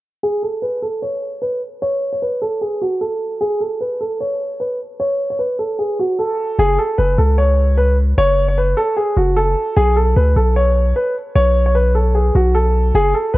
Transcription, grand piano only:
0.23 0.41 G#4 loud
0.43 0.60 A4 medium
0.62 0.80 B4 medium
0.82 1.00 A4 medium
1.02 1.40 C#5 medium
1.42 1.59 B4 medium
1.82 2.11 C#5 loud
2.12 2.21 C#5 medium
2.22 2.39 B4 medium
2.41 2.59 A4 medium
2.61 2.79 G#4 medium
2.81 2.99 F#4 medium
3.01 3.38 A4 medium
3.41 3.58 G#4 loud
3.60 3.78 A4 medium
3.80 3.98 B4 medium
4.00 4.18 A4 medium
4.20 4.58 C#5 medium
4.60 4.77 B4 medium
5.00 5.28 C#5 loud
5.30 5.38 C#5 medium
5.39 5.57 B4 medium
5.59 5.77 A4 medium
5.79 5.96 G#4 medium
5.99 6.17 F#4 medium
6.19 6.56 A4 medium
6.59 6.76 G#4 loud
6.78 6.96 A4 medium
6.98 7.16 B4 medium
7.18 7.36 A4 medium
7.38 7.75 C#5 medium
7.77 7.95 B4 medium
8.18 8.46 C#5 loud
8.48 8.56 C#5 medium
8.58 8.75 B4 medium
8.77 8.95 A4 medium
8.97 9.14 G#4 medium
9.17 9.34 F#4 medium
9.37 9.74 A4 medium
9.76 9.94 G#4 loud
9.96 10.14 A4 medium
10.16 10.34 B4 medium
10.36 10.54 A4 medium
10.56 10.93 C#5 medium
10.96 11.13 B4 medium
11.36 11.64 C#5 loud
11.66 11.74 C#5 medium
11.75 11.92 B4 medium
11.95 12.12 A4 medium
12.15 12.32 G#4 medium
12.35 12.53 F#4 medium
12.55 12.92 A4 medium
12.95 13.12 G#4 loud
13.14 13.32 A4 medium
13.34 13.38 B4 medium

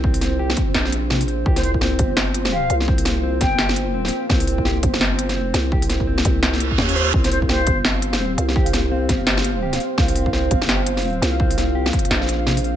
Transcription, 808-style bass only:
0.00 0.56 C2 loud
0.75 1.45 A#1 loud
1.46 1.98 C2 loud
1.99 2.69 G1 loud
2.70 3.40 C2 medium
3.41 4.11 G1 medium
4.30 4.82 C2 loud
4.83 5.32 G1 medium
5.32 5.53 F#1 medium
5.54 6.24 C2 loud
6.25 6.77 C2 medium
6.78 7.13 D#2 medium
7.14 7.66 C2 loud
7.67 8.37 G1 loud
8.38 9.08 C2 loud
9.09 9.79 G1 medium
9.98 10.50 C2 loud
10.51 11.21 G1 loud
11.22 11.92 C2 loud
12.11 12.76 A#1 medium

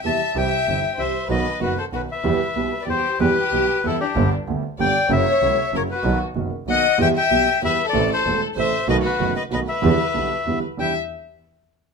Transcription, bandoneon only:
0.06 0.37 A5 loud
0.37 1.01 G5 loud
0.99 1.28 E5 loud
1.31 1.60 D#5 medium
1.62 1.78 B4 medium
1.78 1.85 C5 medium
1.95 2.02 B4 medium
2.12 2.85 E5 medium
2.82 2.88 D5 medium
2.89 3.19 C5 loud
3.21 3.86 B4 loud
3.86 4.00 A4 medium
4.00 4.30 G4 medium
4.80 5.12 G5 loud
5.12 5.76 E5 loud
5.77 5.83 C#5 medium
5.91 6.19 B4 medium
6.70 6.98 F#5 loud
7.02 7.08 G5 loud
7.17 7.61 G5 loud
7.65 7.86 E5 loud
7.89 8.10 D5 loud
8.13 8.41 C5 loud
8.60 8.88 E5 loud
8.90 8.97 D#5 loud
9.06 9.34 B4 loud
9.36 9.43 D#5 medium
9.54 9.61 D#5 medium
9.68 10.59 E5 loud
10.79 10.94 G5 medium

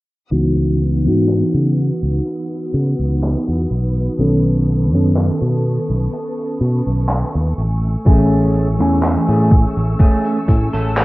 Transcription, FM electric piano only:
0.31 1.00 E3 medium
0.31 1.00 B3 medium
0.31 1.00 D#4 medium
0.31 1.00 F#4 medium
1.05 4.13 E3 medium
1.05 4.14 B3 medium
1.05 4.14 D#4 medium
1.05 4.14 F#4 medium
4.18 4.87 D#3 medium
4.18 4.87 B3 medium
4.18 4.87 C#4 medium
4.18 4.88 A4 medium
4.92 7.55 D#3 medium
4.92 7.55 B3 medium
4.92 7.56 C#4 medium
4.92 7.56 A4 medium
8.05 8.74 E3 medium
8.05 8.74 A3 medium
8.05 8.74 C#4 medium
8.05 8.74 G#4 medium
8.79 11.05 E3 medium
8.79 11.05 A3 medium
8.79 11.05 C#4 medium
8.79 11.05 G#5 medium

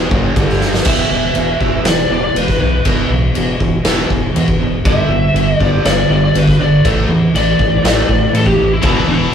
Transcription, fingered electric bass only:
0.11 0.34 F#1 loud
0.36 0.83 G1 medium
0.86 1.04 E1 medium
1.10 1.29 E1 medium
1.35 1.54 E1 medium
1.61 1.79 E1 medium
1.85 2.04 E1 medium
2.10 2.28 E1 loud
2.35 2.53 E1 medium
2.60 2.79 B1 medium
2.85 3.04 E1 medium
3.10 3.29 B1 medium
3.37 3.55 E1 medium
3.60 3.79 E1 medium
3.85 4.03 E1 medium
4.10 4.28 E1 medium
4.36 4.54 E2 medium
4.61 4.79 E1 medium
4.85 5.03 G1 medium
5.08 5.27 G1 medium
5.34 5.53 G1 medium
5.60 5.79 G1 medium
5.84 6.03 G1 medium
6.10 6.28 G1 medium
6.35 6.53 G1 medium
6.59 6.78 G1 medium
6.85 7.03 A1 medium
7.09 7.28 E2 medium
7.34 7.53 A1 medium
7.59 7.77 A1 medium
7.84 8.02 A1 medium
8.09 8.27 A1 medium
8.33 8.52 A2 medium
8.58 8.77 A1 medium
8.83 9.02 E1 medium
9.08 9.27 E1 medium

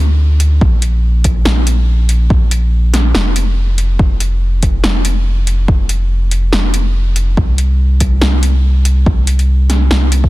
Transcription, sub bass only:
0.00 0.60 D2 medium
0.61 1.44 A#1 loud
1.46 2.29 A#1 medium
3.15 3.98 F1 medium
3.99 4.82 F1 loud
4.84 5.67 F1 loud
5.68 6.51 F1 loud
6.53 7.36 F1 loud
7.37 8.20 C2 loud
8.22 9.05 C2 loud
9.91 10.29 C2 loud

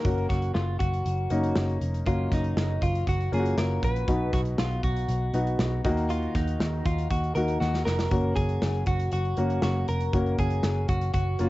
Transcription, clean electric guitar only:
0.00 0.26 A#4 loud
0.29 0.53 F#4 medium
0.54 0.79 F4 medium
0.79 1.77 F#4 medium
2.07 2.33 F4 medium
2.34 2.85 D#4 medium
2.83 3.08 F4 medium
3.09 3.34 F#4 medium
3.34 3.58 G#4 medium
3.58 3.84 A#4 medium
3.84 4.33 B4 loud
4.34 4.40 F#4 medium
4.60 4.84 F4 medium
4.84 5.81 F#4 medium
6.10 6.33 F4 medium
6.35 6.87 D#4 medium
6.86 7.10 F4 medium
7.11 7.35 F#4 medium
7.35 7.59 A#4 medium
7.60 7.85 F#4 medium
7.85 8.35 A#4 medium
8.36 8.83 G#4 medium
8.87 9.11 F#4 medium
9.13 9.62 F#4 medium
9.63 9.88 F#4 medium
9.88 10.35 A#4 medium
10.39 10.86 G#4 medium
10.89 11.12 F#4 medium
11.14 11.49 F#4 medium

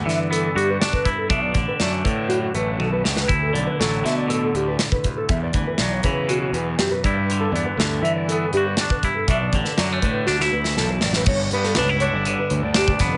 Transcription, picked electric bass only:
0.06 0.47 E3 medium
0.55 0.76 G2 medium
1.29 1.51 B1 medium
1.55 1.66 A1 medium
1.80 2.01 F#2 medium
2.04 2.46 A2 medium
2.54 2.78 A1 medium
2.80 3.03 B1 medium
3.05 3.28 C#2 medium
3.28 3.50 D2 medium
3.54 3.65 B1 loud
3.80 4.01 A1 medium
4.04 4.46 B2 medium
4.54 4.75 D2 medium
5.29 5.50 E2 loud
5.54 5.65 D2 medium
5.79 6.00 B1 medium
6.04 6.45 C#3 medium
6.52 6.74 E2 medium
7.04 7.45 G2 medium
7.52 7.63 E2 loud
7.77 7.98 D2 medium
8.02 8.44 E3 medium
8.53 8.74 G2 medium
9.28 9.49 B1 medium
9.52 9.63 A1 medium
9.78 9.99 F#2 medium
10.02 10.23 A2 medium
10.28 10.48 D2 medium
10.52 10.73 D2 medium
10.76 10.99 B1 medium
11.02 11.25 A1 medium
11.26 11.47 G1 loud
11.52 11.78 G2 medium
11.77 12.07 C#2 loud
12.14 12.34 G1 medium
12.51 12.61 D2 medium
12.63 12.94 D2 medium
13.00 13.17 F1 medium

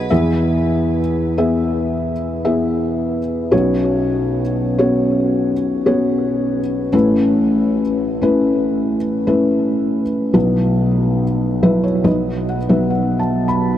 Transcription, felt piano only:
0.00 0.13 F#4 soft
0.00 0.13 B4 medium
0.00 0.13 D#5 medium
0.10 3.49 E2 medium
0.10 3.49 E3 medium
0.10 1.00 B3 medium
0.10 1.00 E4 medium
0.10 1.00 G#4 medium
0.10 1.00 E5 medium
1.38 2.13 B3 medium
1.38 2.12 E4 medium
1.38 2.12 G#4 medium
1.38 2.13 E5 medium
2.45 3.19 B3 medium
2.45 3.19 E4 medium
2.45 3.19 G#4 medium
2.45 3.19 E5 medium
3.51 6.89 B1 medium
3.51 6.89 B2 medium
3.51 4.40 B3 medium
3.51 4.40 C#4 medium
3.51 4.40 F#4 medium
3.51 4.41 C#5 medium
4.78 5.53 B3 medium
4.78 5.53 C#4 medium
4.78 5.53 F#4 medium
4.78 5.53 C#5 medium
5.86 6.60 B3 medium
5.86 6.60 C#4 medium
5.86 6.60 F#4 medium
5.86 6.60 C#5 medium
6.93 10.30 A1 medium
6.93 10.31 A2 medium
6.93 7.81 A3 medium
6.93 7.81 C#4 medium
6.93 7.81 E4 medium
6.93 7.82 B4 medium
8.22 8.96 A3 medium
8.22 8.95 C#4 medium
8.22 8.96 E4 medium
8.22 8.96 B4 medium
9.27 10.01 A3 medium
9.27 10.01 C#4 medium
9.27 10.01 E4 medium
9.27 10.01 B4 medium
10.33 12.02 B1 medium
10.33 12.02 B2 medium
10.33 11.23 F#3 medium
10.33 11.23 B3 medium
10.33 11.23 E4 medium
10.33 11.23 B4 medium
11.63 12.03 F#3 medium
11.63 12.03 B3 medium
11.63 12.06 E4 medium
11.63 12.03 B4 medium
11.63 11.83 E5 soft
11.84 12.04 C#5 soft
12.04 13.74 B1 medium
12.04 13.74 B2 medium
12.04 12.57 F#3 medium
12.04 12.57 B3 medium
12.04 12.57 D#4 medium
12.04 12.57 B4 medium
12.04 12.45 D#5 soft
12.49 12.69 F#5 soft
12.69 13.45 F#3 medium
12.69 13.45 B3 medium
12.69 13.45 D#4 medium
12.69 13.45 B4 medium
12.69 12.91 E5 soft
12.90 13.18 F#5 soft
13.19 13.47 A5 soft
13.48 13.76 B5 soft

